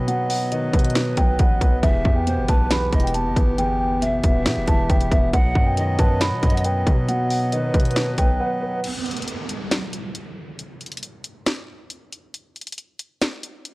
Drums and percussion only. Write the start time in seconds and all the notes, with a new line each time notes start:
0.08 closed hi-hat
0.30 open hi-hat
0.52 closed hi-hat
0.73 kick, closed hi-hat
0.79 closed hi-hat
0.84 closed hi-hat
0.90 closed hi-hat
0.95 snare, closed hi-hat
1.17 kick, closed hi-hat
1.39 kick, closed hi-hat
1.61 kick, closed hi-hat
1.83 kick, closed hi-hat
2.05 kick
2.27 closed hi-hat
2.48 kick, closed hi-hat
2.71 snare, closed hi-hat
2.93 kick, closed hi-hat
3.00 closed hi-hat
3.07 closed hi-hat
3.14 closed hi-hat
3.36 kick, closed hi-hat
3.58 closed hi-hat
4.02 closed hi-hat
4.24 kick, closed hi-hat
4.46 snare, closed hi-hat
4.68 kick, closed hi-hat
4.90 kick, closed hi-hat
5.01 closed hi-hat
5.12 kick, closed hi-hat
5.33 kick, closed hi-hat
5.55 kick
5.77 closed hi-hat
5.99 kick, closed hi-hat
6.21 snare, closed hi-hat
6.43 kick, closed hi-hat
6.50 closed hi-hat
6.57 closed hi-hat
6.64 closed hi-hat
6.87 kick, closed hi-hat
7.09 closed hi-hat
7.30 open hi-hat
7.52 closed hi-hat
7.74 kick, closed hi-hat
7.80 closed hi-hat
7.85 closed hi-hat
7.91 closed hi-hat
7.96 snare, closed hi-hat
8.18 kick, closed hi-hat
8.84 closed hi-hat, crash
9.06 closed hi-hat
9.11 closed hi-hat
9.17 closed hi-hat
9.22 closed hi-hat
9.28 closed hi-hat
9.49 closed hi-hat
9.71 snare, closed hi-hat
9.93 closed hi-hat
10.15 closed hi-hat
10.59 closed hi-hat
10.81 closed hi-hat
10.86 closed hi-hat
10.92 closed hi-hat
10.97 closed hi-hat
11.03 closed hi-hat
11.24 closed hi-hat
11.46 snare, closed hi-hat
11.90 closed hi-hat
12.12 closed hi-hat
12.34 closed hi-hat
12.56 closed hi-hat
12.61 closed hi-hat
12.67 closed hi-hat
12.72 closed hi-hat
12.78 closed hi-hat
12.99 closed hi-hat
13.22 snare, closed hi-hat
13.43 closed hi-hat
13.65 closed hi-hat